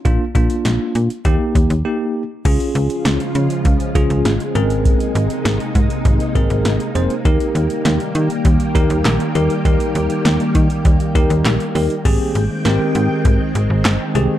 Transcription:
<<
  \new Staff \with { instrumentName = "Tine electric piano" } { \time 4/4 \key aes \major \tempo 4 = 100 <bes d' f'>8 <bes d' f'>4~ <bes d' f'>16 r16 <bes ees' g'>4 <bes ees' g'>8 r8 | <des' f' aes'>4~ <des' f' aes'>16 r4 r16 <des' f' aes'>8 r8 <c' aes' bes'>8~ | <c' aes' bes'>4 r4. <c' aes' bes'>8 r8 <c' aes' c''>8 | <ees' g' bes'>4~ <ees' g' bes'>16 r4 r16 <ees' g' bes'>8 r8 <ees' g' bes'>8 |
<ees' g' bes'>4~ <ees' g' bes'>16 r4 r16 <ees' g' bes'>8 r8 <ees' g' bes'>8 | <c' g' aes'>8 r8 <c' g' bes'>4~ <c' g' bes'>16 r4 r16 <c' g' aes'>8 | }
  \new Staff \with { instrumentName = "String machine" } { \clef bass \time 4/4 \key aes \major << { r1 | <des f f'>2.~ <des f f'>8 <c ees'>8~ | <c ees'>1 | <ees g g'>1~ |
<ees g g'>1 | <ees aes g''>1 | } \\ { r1 | aes2.~ aes8 bes8~ | bes1~ | bes1~ |
bes1 | c'1 | } >> }
  \new Staff \with { instrumentName = "FM bass" } { \clef bass \time 4/4 \key aes \major bes,,16 r16 bes,,16 r16 bes,,16 r16 bes,16 r16 ees,16 r16 ees,16 ees,16 r4 | des,16 r16 des,16 r16 des,16 r16 des16 r16 des,16 r16 des,16 des,16 aes,,16 r16 aes,,8~ | aes,,16 r16 aes,,16 r16 aes,,16 r16 aes,16 r16 aes,,16 r16 aes,,16 aes,,16 aes,,16 r16 f,,16 r16 | ees,16 r16 ees,16 r16 ees,16 r16 ees16 r16 ees,16 r16 ees,16 ees,16 bes,,16 r16 ees,16 r16 |
ees,16 r16 ees,16 r16 ees,16 r16 ees16 r16 ees,16 r16 ees,16 ees,16 bes,,16 r16 ees,16 r16 | aes,,16 r16 aes,,16 r16 aes,,16 r16 aes,16 r16 aes,,16 r16 aes,,16 aes,,16 g,,16 r16 c,16 r16 | }
  \new DrumStaff \with { instrumentName = "Drums" } \drummode { \time 4/4 <hh bd>8 <hh bd>16 hh16 <hh sn>8 hh16 hh16 <hh bd>8 <hh bd>16 hh16 r4 | <cymc hh bd>16 hh16 hh16 hh16 <hh sn>16 hh16 hh16 hh16 <hh bd>16 hh16 <hh bd>16 hh16 <hh sn>16 hh16 hh16 hh16 | <hh bd>16 hh16 hh16 hh16 <hh sn>16 hh16 <hh bd>16 hh16 <hh bd>16 hh16 <hh bd>16 hh16 <hh sn>16 hh16 hh16 hh16 | <hh bd>16 hh16 hh16 hh16 <hh sn>16 hh16 hh16 hh16 <hh bd>16 hh16 <hh bd>16 hh16 <hc hh sn>16 hh16 hh16 hh16 |
<hh bd>16 hh16 hh16 hh16 <hh sn>16 hh16 <hh bd>16 hh16 <hh bd>16 hh16 <hh bd>16 hh16 <hc hh sn>16 hh16 hho16 hh16 | <cymc hh bd>8 hh8 <hh sn>8 hh8 <hh bd>8 hh8 <hc hh sn>8 hh8 | }
>>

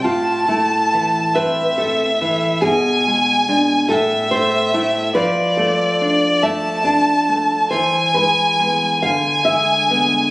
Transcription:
<<
  \new Staff \with { instrumentName = "Violin" } { \time 6/8 \key a \minor \tempo 4. = 47 a''4. e''4. | gis''4. e''4. | \key e \phrygian d''4. a''4. | gis''4. gis''4. | }
  \new Staff \with { instrumentName = "Nylon-string guitar" } { \time 6/8 \key a \minor << { f'8 e'4 b'8 a'4 | gis'4. a'8 c''4 | \key e \phrygian b'8 a'4 e''8 d''4 | c''8 b'4 f''8 e''4 | } \\ { a,8 a8 e8 c'8 a8 e8 | b,8 gis8 <gis d'>8 a,8 a8 <a e'>8 | f8 a8 d'8 a8 d'8 a8 | e8 gis8 <gis b>8 d8 gis8 <gis b>8 | } >> }
>>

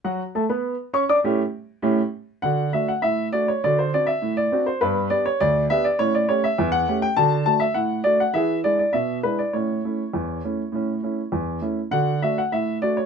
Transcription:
\new Staff \with { instrumentName = "Grand piano" } { \time 2/4 \key d \major \tempo 4 = 101 << { <fis fis' fis''>8 <a a' a''>16 <b b' b''>8. <cis' cis'' cis'''>16 <d' d'' d'''>16 | <a, a cis' g'>8 r8 <a, a cis' g'>8 r8 | fis''8 e''16 fis''16 e''8 d''16 cis''16 | d''16 c''16 d''16 e''8 d''8 c''16 |
b'8 d''16 cis''16 d''8 e''16 d''16 | cis''16 d''16 cis''16 e''8 fis''8 g''16 | a''8 a''16 e''16 fis''8 d''16 fis''16 | e''8 d''16 d''16 e''8 b'16 d''16 |
cis''2~ | cis''4 r4 | fis''8 e''16 fis''16 e''8 d''16 cis''16 | } \\ { r2 | r2 | <d fis'>8 <a d' fis'>8 a,8 <a d' fis'>8 | <d fis'>8 <c' d' fis'>8 a,8 <c' d' fis'>8 |
<g, b>8 <b d' g'>8 d,8 <b d' g'>8 | <a, cis'>8 <a cis' g'>8 e,8 <a cis' g'>8 | <d fis'>8 <a d' fis'>8 a,8 <a d' fis'>8 | <e gis'>8 <gis d' e'>8 b,8 <gis d' e'>8 |
<a, cis'>8 <a cis' e'>8 e,8 <a cis' e'>8 | <a, cis'>8 <a cis' e'>8 e,8 <a cis' e'>8 | <d fis'>8 <a d' fis'>8 a,8 <a d' fis'>8 | } >> }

